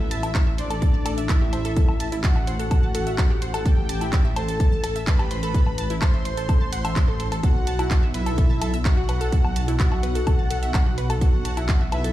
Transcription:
Already playing: A1 E4 E5
0.11 A5 A6, open hi-hat
0.23 E4 E5, closed hi-hat, low woodblock
0.35 A5 A6, kick, clap, closed hi-hat
0.47 E5 E6
0.58 D4 C5 D5 C6, open hi-hat
0.70 A4 A5, closed hi-hat, low woodblock
0.82 A4 A5, kick, closed hi-hat
0.94 A5 A6
1.06 A4 A5, open hi-hat, low woodblock
1.18 E5 E6, closed hi-hat
1.29 E4 E5 A5 A6, kick, clap, closed hi-hat
1.41 G4 G5
1.53 C5 C6, open hi-hat, low woodblock
1.65 A4 A5, closed hi-hat
1.76 A4 A5, kick, closed hi-hat
1.89 low woodblock
2.00 A5 A6, open hi-hat
2.12 E4 E5, closed hi-hat
2.24 F#4 F#5 A5 A6, kick, clap, closed hi-hat
2.36 E5 E6, low woodblock
2.47 C5 C6, open hi-hat
2.60 A4 A5, closed hi-hat
2.71 A4 A5, kick, closed hi-hat, low woodblock
2.83 A5 A6
2.95 A4 A5, open hi-hat
3.07 E5 E6, closed hi-hat
3.18 A5 A6, kick, clap, closed hi-hat, low woodblock
3.30 G4 G5
3.42 C5 C6, open hi-hat
3.54 A4 A5, closed hi-hat, low woodblock
3.65 G4 A4 G5 A5, kick, closed hi-hat
3.89 A5 A6, open hi-hat
4.01 E4 E5, closed hi-hat, low woodblock
4.13 A5 A6, kick, clap, closed hi-hat
4.25 E5 E6
4.36 A4 C5 A5 C6, open hi-hat, low woodblock
4.48 A4 A5, closed hi-hat
4.60 A4 A5, kick, closed hi-hat
4.72 A5 A6
4.84 A4 A5, open hi-hat, low woodblock
4.96 E5 E6, closed hi-hat
5.07 B4 A5 B5 A6, kick, clap, closed hi-hat
5.19 G4 G5, low woodblock
5.31 C5 C6, open hi-hat
5.43 A4 A5, closed hi-hat
5.54 A4 A5, kick, closed hi-hat
5.67 low woodblock
5.78 A5 A6, open hi-hat
5.90 E4 E5, closed hi-hat
6.02 C5 A5 C6 A6, kick, clap, closed hi-hat, low woodblock
6.14 E5 E6
6.25 C5 C6, open hi-hat
6.37 A4 A5, closed hi-hat
6.49 A4 A5, kick, closed hi-hat, low woodblock
6.61 A5 A6
6.73 F#5 F#6, open hi-hat
6.85 E5 E6, closed hi-hat, low woodblock
6.96 E5 E6, kick, clap, closed hi-hat
7.08 A4 A5
7.20 A4 A5, open hi-hat
7.32 A4 A5, closed hi-hat, low woodblock
7.43 B1 F#4 A4 F#5 A5, kick, closed hi-hat, low woodblock
7.67 A5 A6, open hi-hat
7.79 E4 E5, closed hi-hat, low woodblock
7.91 A5 A6, kick, clap, closed hi-hat
8.03 E5 E6
8.14 E4 B4 E5 B5, open hi-hat
8.26 A4 A5, closed hi-hat, low woodblock
8.38 A4 A5, kick, closed hi-hat
8.50 A5 A6
8.62 A4 A5, open hi-hat, low woodblock
8.74 E5 E6, closed hi-hat
8.85 F#4 F#5 A5 A6, kick, clap, closed hi-hat
8.97 F#4 F#5
9.09 B4 B5, open hi-hat, low woodblock
9.21 A4 A5, closed hi-hat
9.32 A4 A5, kick, closed hi-hat
9.45 low woodblock
9.56 A5 A6, open hi-hat
9.68 E4 E5, closed hi-hat
9.80 F#4 F#5 A5 A6, kick, clap, closed hi-hat
9.92 E5 E6, low woodblock
10.03 B4 B5, open hi-hat
10.15 A4 A5, closed hi-hat
10.27 A4 A5, kick, closed hi-hat, low woodblock
10.39 A5 A6
10.50 A4 A5, open hi-hat
10.63 E5 E6, closed hi-hat
10.74 A5 A6, kick, clap, closed hi-hat, low woodblock
10.86 F#4 F#5
10.98 B4 B5, open hi-hat
11.10 A4 A5, closed hi-hat, low woodblock
11.21 F#4 A4 F#5 A5, kick, closed hi-hat
11.45 A5 A6, open hi-hat
11.57 E4 E5, closed hi-hat, low woodblock
11.69 A5 A6, kick, clap, closed hi-hat
11.81 E5 E6
11.92 E4 B4 E5 B5, open hi-hat, low woodblock
12.04 A4 A5, closed hi-hat

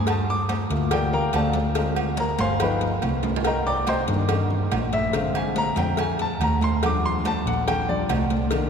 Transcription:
Already playing: G2
0.07 A5, cowbell, high conga, low agogo
0.29 D6, high conga
0.49 cowbell, high conga, low agogo
0.70 D2 A3 A#3 F4, cowbell, high conga
0.91 G4 A#4 D5 G5, cowbell, high conga, low conga, low agogo
1.13 A#4 F5 G5 A#5, high conga, low conga
1.33 D2 A4 D5 F5 A5, cowbell, high conga, low agogo
1.53 cowbell, high conga
1.75 G#3 C4 F4, cowbell, high conga, low agogo
1.96 high conga, low agogo
2.17 A#4 A#5, cowbell, high conga
2.39 G1 C5 F5 G#5 C6, cowbell, high conga, low agogo
2.60 F3 B3 D#4 B4 F5 G5 B5, cowbell, high conga, low agogo
2.81 cowbell, high conga
3.02 C2, cowbell, high conga, low agogo
3.23 cowbell, high conga, high timbale
3.36 low timbale
3.44 A#4 D#5 G5 A#5, cowbell, high conga, low agogo
3.66 D5 G5 A#5 D6, high conga
3.87 C5 D#5 G5 C6, cowbell, high conga, low agogo
4.08 G2 D#3 A#3 D4, cowbell, high conga
4.29 cowbell, high conga, low conga, low agogo
4.50 high conga, low conga
4.71 A#1, cowbell, high conga, low timbale, low agogo
4.93 E5, cowbell, high conga
5.13 D3 G#3 C4 F5, cowbell, high conga, low agogo
5.35 G#5, high conga, low agogo
5.56 A#5, cowbell, high conga
5.76 F2 D3 G#3 C4 G5, cowbell, high conga, low agogo
5.97 G#5, cowbell, high conga, low agogo
6.19 A5, cowbell, high conga
6.40 D#2 A#5, cowbell, high conga, low agogo
6.61 C6, cowbell, high conga
6.83 F3 G3 D4 D6, cowbell, high conga, low agogo
7.04 C6, high conga
7.25 A5, cowbell, high conga, low agogo
7.46 A#1 F#5, cowbell, high conga
7.68 G5, cowbell, high conga, low conga, low agogo
7.89 F3 G3 D4 D5, high conga, low conga
8.09 C2, cowbell, high conga, low timbale, low agogo
8.30 cowbell, high conga
8.51 D#3 A#3 D4, cowbell, high conga, low agogo

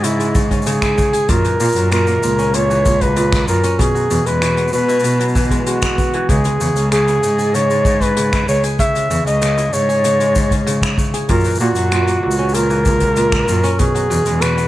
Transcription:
Already playing: G#2 G#3 C#4 E4 G#4
0.04 C#3 E4, closed hi-hat, shaker
0.20 G#3, closed hi-hat, shaker
0.35 C#3, kick, shaker
0.51 C#4, kick, closed hi-hat, shaker
0.62 shaker
0.66 C#3 G#4, closed hi-hat, shaker
0.72 shaker
0.82 E4, finger snap, kick, closed hi-hat, shaker
0.98 C#3, kick, shaker
1.13 G#4, closed hi-hat, shaker
1.29 F#2 A#2 A#4, kick, closed hi-hat, shaker
1.44 E3, closed hi-hat, shaker
1.60 A#2, shaker
1.64 shaker
1.68 shaker
1.72 F#2 F#3, closed hi-hat, shaker
1.76 shaker
1.91 A#2 A#4, finger snap, closed hi-hat, shaker
2.07 A#3, closed hi-hat, shaker
2.23 C#2 A#2, shaker
2.39 C#4, shaker
2.54 A#2 C#5, closed hi-hat, shaker
2.70 E3, shaker
2.85 A#2, kick, shaker
3.01 F#3 B4, kick, closed hi-hat, shaker
3.16 A#2, closed hi-hat, shaker
3.33 A#3, finger snap, kick, closed hi-hat, shaker
3.48 F#2 A#2 A#4, shaker
3.63 C#4, closed hi-hat, shaker
3.79 B2 G#4, kick, closed hi-hat, shaker
3.95 F#3, shaker
4.10 E2 B2, shaker
4.26 E2 G#3 B4, closed hi-hat, shaker
4.42 B2, finger snap, closed hi-hat, shaker
4.57 B3, closed hi-hat, shaker
4.68 shaker
4.73 B2 B4, shaker
4.78 shaker
4.88 E4, shaker
4.99 shaker
5.04 B2, closed hi-hat, shaker
5.10 shaker
5.20 F#3, closed hi-hat, shaker
5.28 shaker
5.35 E3, kick, shaker
5.44 shaker
5.51 G#3, kick, closed hi-hat, shaker
5.66 G#3 F#4, closed hi-hat, shaker
5.82 B3, finger snap, kick, closed hi-hat, shaker
5.98 B3, kick, shaker
6.13 E3, closed hi-hat
6.29 C#2 C#3 G#4, kick, closed hi-hat, shaker
6.44 G#3, closed hi-hat, shaker
6.61 E2 C#3, shaker
6.76 C#2 C#4, closed hi-hat, shaker
6.92 C#3 G#4, finger snap, closed hi-hat, shaker
7.07 E4, closed hi-hat, shaker
7.23 G#2 C#3, shaker
7.39 G#4, shaker
7.54 C#3 C#5, closed hi-hat, shaker
7.70 G#3, shaker
7.85 C#3, kick, shaker
8.01 C#4 B4, kick, closed hi-hat, shaker
8.17 C#3, closed hi-hat, shaker
8.32 E4, finger snap, kick, closed hi-hat, shaker
8.48 C#2 C#3 C#5, shaker
8.63 G#4, closed hi-hat, shaker
8.79 C#3 E5, kick, closed hi-hat, shaker
8.95 G#3, closed hi-hat, shaker
9.10 E2 C#3, shaker
9.26 C#2 C#4 D#5, closed hi-hat, shaker
9.42 C#3, finger snap, closed hi-hat, shaker
9.58 E4, closed hi-hat, shaker
9.73 G#2 C#3 C#5, shaker
9.89 G#4, shaker
10.04 C#3, closed hi-hat, shaker
10.20 G#3, closed hi-hat, shaker
10.35 C#3, kick, shaker
10.51 C#4, kick, closed hi-hat, shaker
10.67 C#3, closed hi-hat, shaker
10.82 E4, finger snap, kick, closed hi-hat, shaker
10.98 C#3, kick, shaker
11.14 G#4, closed hi-hat, shaker
11.29 F#2 A#2 A#4, kick, closed hi-hat, shaker
11.35 shaker
11.40 shaker
11.44 E3, closed hi-hat, shaker
11.50 shaker
11.55 shaker
11.60 A#2 F#4, shaker
11.75 F#2 F#3, closed hi-hat, shaker
11.91 A#2, finger snap, closed hi-hat
12.07 A#3, closed hi-hat, shaker
12.23 C#2 A#2
12.31 shaker
12.38 C#4, shaker
12.49 shaker
12.54 A#2 A#4, closed hi-hat, shaker
12.59 shaker
12.70 E3, shaker
12.85 A#2, kick, shaker
13.00 F#3, kick, closed hi-hat, shaker
13.16 A#2, closed hi-hat, shaker
13.32 A#3, finger snap, kick, closed hi-hat, shaker
13.48 F#2 A#2, shaker
13.64 C#4, closed hi-hat, shaker
13.79 B2 G#4, kick, closed hi-hat, shaker
13.95 F#3, closed hi-hat, shaker
14.10 E2 B2, shaker
14.26 E2 G#3, closed hi-hat, shaker
14.41 B2 B4, finger snap, closed hi-hat, shaker
14.57 B3, closed hi-hat, shaker

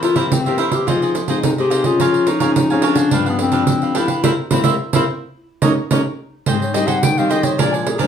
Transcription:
Already playing: E3
0.03 E4 F4 A#4 C5 E5, pandeiro
0.15 A#3 C4 E4 G4 A#4 C5 E5, pandeiro
0.32 E3 C4, pandeiro
0.46 A#3 C4 G4 A#4 C5 E5, pandeiro
0.58 E4 A#4 C5 E5, pandeiro
0.71 G4 A#4 C5 E5, pandeiro
0.87 F3 C4 D#4 F4 G#4 C5 D#5, pandeiro
1.02 G#4 C5 D#5, pandeiro
1.15 pandeiro
1.28 C4 D#4 F4 G#4 C5 D#5, pandeiro
1.43 C3 D#4, pandeiro
1.58 C4 D#4 G4 G#4 C5 D#5, pandeiro
1.70 F4 G#4 C5 D#5, pandeiro
1.84 C4 C#4 F4 G#4 C5 D#5, pandeiro
2.00 F3 A#4 C#5 F5 G#5, pandeiro
2.14 pandeiro
2.27 D#4 A#4 C#5 F5 G#5, pandeiro
2.40 C4 C#4 G#4 A#4 C#5 F5 G#5, pandeiro
2.56 F3, pandeiro
2.70 C4 C#4 G#4 C#5 F5 G#5, pandeiro
2.82 D4 A#4 C#5 F5 G#5, pandeiro
2.95 C#5 F5 G#5, pandeiro
3.11 G2 F3 B3 D4 G4 B4 F5, pandeiro
3.26 B3 G4 B4 F5, pandeiro
3.39 C4, pandeiro
3.52 F3 D4 G4 B4 F5, pandeiro
3.67 D3, pandeiro
3.82 G4 B4 F5, pandeiro
3.95 F3 B3 D4 E4 G4 B4 F5, pandeiro
4.07 G4 B4 F5, pandeiro
4.23 A#3 C4 E4 A#4 C5 E5, pandeiro
4.51 A#3 C4 E4 A#4 C5 E5, pandeiro
4.63 A#3 C4 E4 A#4 C5 E5, pandeiro
4.93 A#3 C4 E4 A#4 C5 E5, pandeiro
5.62 A#3 C#4 D#4 A#4 C#5 D#5, pandeiro
5.91 A#3 C#4 D#4 A#4 C#5 D#5, pandeiro
6.46 G#2 G3 C4 D#4 G#4 C5 D#5 G5, pandeiro
6.62 C#5, pandeiro
6.74 G3 C4 D#4 G#4 C5 D#5 G5, pandeiro
6.87 G#4 C5 D#5 F#5 G5, pandeiro
7.03 D#3 G5, pandeiro
7.18 G3 C4 D#4 C5 D#5 F5 G5, pandeiro
7.29 G#4 C5 D#5 G5, pandeiro
7.43 C5 C#5 D#5 G5, pandeiro
7.58 A#2 F3 G#3 D4 A#4 D5 G#5, pandeiro
7.72 F4 A#4 D5 G#5, pandeiro
7.87 G#4, pandeiro
7.98 F3 G#3 D4 A#4 C5 D5 G#5, pandeiro
8.03 D4

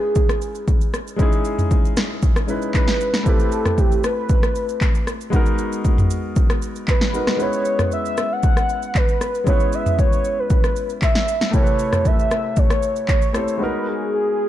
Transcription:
Already playing: G#3 C#4 D#4 E4 G#4 B4
0.15 kick, shaker
0.29 cross-stick, shaker
0.42 shaker
0.55 shaker
0.68 kick, shaker
0.81 shaker
0.94 cross-stick, shaker
1.07 shaker
1.16 G#3 C#4 D#4, kick, shaker
1.21 E4 G#4
1.32 shaker
1.45 shaker
1.59 mid tom, shaker
1.71 kick, shaker
1.85 shaker
1.97 cross-stick, snare, shaker
2.22 kick, shaker
2.36 cross-stick, shaker
2.47 G#3 C#4 D#4 E4 B4, shaker
2.62 shaker
2.74 B4, kick, clap, shaker
2.88 snare, shaker
3.01 shaker
3.14 snare, shaker
3.23 A3 C4 E4, kick, shaker
3.28 G4 A4 B4
3.39 shaker
3.52 shaker
3.65 cross-stick, mid tom, shaker
3.78 G4, kick, shaker
3.92 shaker
4.04 B4, cross-stick, shaker
4.29 kick, shaker
4.43 cross-stick, shaker
4.55 shaker
4.69 shaker
4.81 kick, clap, shaker
4.95 shaker
5.07 cross-stick, shaker
5.21 shaker
5.30 G#3 B3 D#4, kick, shaker
5.34 F#4 A#4
5.46 shaker
5.58 shaker
5.72 shaker
5.85 kick, shaker
5.98 mid tom, shaker
6.11 shaker
6.36 kick, shaker
6.50 cross-stick, shaker
6.62 shaker
6.76 shaker
6.88 B4, kick, clap, shaker
7.01 snare, shaker
7.13 G#3 B3 D#4 F#4 A#4, shaker
7.27 cross-stick, snare, shaker
7.37 G#3 B3 C#4, shaker
7.41 E4 B4 C#5
7.53 shaker
7.65 shaker
7.79 cross-stick, mid tom, shaker
7.92 E5, shaker
8.06 shaker
8.17 cross-stick, shaker
8.32 F#5
8.43 kick, shaker
8.57 cross-stick, shaker
8.69 shaker
8.82 shaker
8.95 B4, kick, clap, shaker
9.09 shaker
9.21 cross-stick, shaker
9.35 shaker
9.44 G#3 B3 C#4, kick, shaker
9.48 E4 B4 C#5
9.60 shaker
9.73 E5, shaker
9.86 mid tom, shaker
9.99 C#5, kick, shaker
10.13 shaker
10.24 shaker
10.39 B4
10.50 kick, shaker
10.64 cross-stick, shaker
10.76 shaker
10.90 shaker
11.02 E5, kick, clap, shaker
11.15 snare, shaker
11.28 shaker
11.41 snare, shaker
11.51 C3 A3 E4, kick, shaker
11.55 G4 A#4 C#5
11.63 B4, shaker
11.79 shaker
11.93 cross-stick, mid tom, shaker
12.05 E5, kick, shaker
12.19 shaker
12.31 cross-stick, shaker
12.56 C#5, kick, shaker
12.70 cross-stick, shaker
12.83 shaker
12.96 shaker
13.08 C#5, kick, clap, shaker
13.22 shaker
13.33 A3 C4 E4 G4 C5, cross-stick, shaker
13.48 shaker
13.58 G#3 B3 D#4
13.62 F#4 A#4 B4
13.88 G#4
14.13 G#4

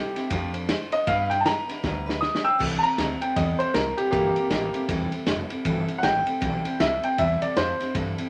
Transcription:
Already playing: G3 C4 E4 G4 A4
0.15 G3 C4 E4 A4, muted upright bass stroke, snare, ride
0.30 F2 F3 A3 D4 A4 C5, kick, snare, ride
0.53 D4 A4 C5, ride
0.68 A3 D4 A4 C5, snare, ride
0.92 D4 A4 C5 D#5, muted upright bass stroke, ride
1.07 G2 G3 B3 D4 E4 B4 F5, kick, ride
1.30 D4 E4 B4 G5, snare, ride
1.41 A5
1.45 B3 D4 E4 B4 A#5, snare, ride
1.68 D4 E4 B4, muted upright bass stroke, snare, ride
1.83 D2 G3 B3 D4 E4 B4, kick, snare
2.06 D4 E4 B4, snare
2.21 B3 D4 E4 B4 D#6, snare
2.35 snare
2.44 D4 E4 B4 G5 E6, muted upright bass stroke
2.59 C2 C3 E3 G3 C4 E4 A4, kick, crash
2.79 A5
2.83 G3 C4 E4 A#5, muted upright bass stroke, ride
2.97 D2 G3 C4 E4 A4, snare, ride
3.21 G3 C4 E4 A4 G5, muted upright bass stroke, ride
3.36 E2 C3 E3 G3 C4 E4 A4 D#5, kick, snare, ride
3.59 G3 C4 E4 A4 C5, muted upright bass stroke, ride
3.74 C2 G3 E4 A4 A#4, snare, ride
3.97 G3 C4 E4 G4 A4, muted upright bass stroke, ride
4.11 G1 C3 E3 G3 A#3 C4 E4 G4 A4, kick, ride
4.36 G3 C4 E4 A4, ride
4.50 A1 G3 C4 E4 A4, snare, ride
4.74 G3 C4 E4 A4, muted upright bass stroke, ride
4.89 E1 C3 E3 G3 C4 E4 A4, kick, ride
5.12 G3 C4 E4 A4, muted upright bass stroke, ride
5.26 F1 G3 C4 E4 A4, snare, ride
5.50 G3 C4 E4 A4, muted upright bass stroke, ride
5.65 G1 C3 E3 G3 C4 E4 A4, kick, ride
5.88 G3 C4 E4 A4, muted upright bass stroke, ride
5.98 G3 F#5
6.03 A1 C4 E4 A4 G5, snare, ride
6.26 G3 C4 E4 A4, muted upright bass stroke, ride
6.41 B1 C3 E3 G3 C4 E4 A4, kick, ride
6.65 G3 C4 E4 A4, muted upright bass stroke, ride
6.80 C2 G3 C4 E4 A4 E5, snare, ride
7.03 G3 C4 E4 A4 G5, muted upright bass stroke, ride
7.18 E2 C3 E3 G3 C4 E4 A4 E5, kick, ride
7.42 G3 C4 E4 A4 D5, muted upright bass stroke, ride
7.56 F2 G3 C4 A4 C5, snare, ride
7.79 G3 C4 E4 A4, muted upright bass stroke, snare, ride
7.95 G2 C3 E3 G3 C4 E4 A4, kick, ride
8.18 G3 C4 E4 A4, muted upright bass stroke, ride

